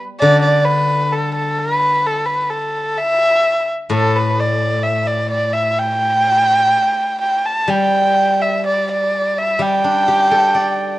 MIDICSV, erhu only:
0, 0, Header, 1, 2, 480
1, 0, Start_track
1, 0, Tempo, 925926
1, 119, Time_signature, 4, 2, 24, 8
1, 3001, Tempo, 953895
1, 5618, End_track
2, 0, Start_track
2, 0, Title_t, "Erhu"
2, 0, Program_c, 0, 110
2, 104, Note_on_c, 0, 74, 86
2, 217, Note_off_c, 0, 74, 0
2, 220, Note_on_c, 0, 74, 68
2, 337, Note_on_c, 0, 71, 70
2, 345, Note_off_c, 0, 74, 0
2, 582, Note_on_c, 0, 69, 69
2, 590, Note_off_c, 0, 71, 0
2, 696, Note_off_c, 0, 69, 0
2, 699, Note_on_c, 0, 69, 70
2, 823, Note_on_c, 0, 71, 82
2, 831, Note_off_c, 0, 69, 0
2, 1071, Note_on_c, 0, 69, 77
2, 1079, Note_off_c, 0, 71, 0
2, 1169, Note_on_c, 0, 71, 68
2, 1177, Note_off_c, 0, 69, 0
2, 1296, Note_on_c, 0, 69, 67
2, 1304, Note_off_c, 0, 71, 0
2, 1543, Note_on_c, 0, 76, 83
2, 1551, Note_off_c, 0, 69, 0
2, 1911, Note_off_c, 0, 76, 0
2, 2034, Note_on_c, 0, 69, 80
2, 2156, Note_on_c, 0, 71, 70
2, 2164, Note_off_c, 0, 69, 0
2, 2279, Note_on_c, 0, 74, 70
2, 2287, Note_off_c, 0, 71, 0
2, 2503, Note_on_c, 0, 76, 73
2, 2511, Note_off_c, 0, 74, 0
2, 2628, Note_on_c, 0, 74, 73
2, 2635, Note_off_c, 0, 76, 0
2, 2753, Note_off_c, 0, 74, 0
2, 2756, Note_on_c, 0, 74, 73
2, 2867, Note_on_c, 0, 76, 73
2, 2875, Note_off_c, 0, 74, 0
2, 2999, Note_on_c, 0, 79, 87
2, 3007, Note_off_c, 0, 76, 0
2, 3715, Note_off_c, 0, 79, 0
2, 3718, Note_on_c, 0, 79, 68
2, 3840, Note_on_c, 0, 81, 72
2, 3848, Note_off_c, 0, 79, 0
2, 3963, Note_on_c, 0, 79, 86
2, 3970, Note_off_c, 0, 81, 0
2, 4322, Note_on_c, 0, 76, 72
2, 4330, Note_off_c, 0, 79, 0
2, 4446, Note_off_c, 0, 76, 0
2, 4452, Note_on_c, 0, 74, 72
2, 4563, Note_off_c, 0, 74, 0
2, 4575, Note_on_c, 0, 74, 68
2, 4810, Note_on_c, 0, 76, 74
2, 4818, Note_off_c, 0, 74, 0
2, 4929, Note_on_c, 0, 79, 88
2, 4937, Note_off_c, 0, 76, 0
2, 5618, Note_off_c, 0, 79, 0
2, 5618, End_track
0, 0, End_of_file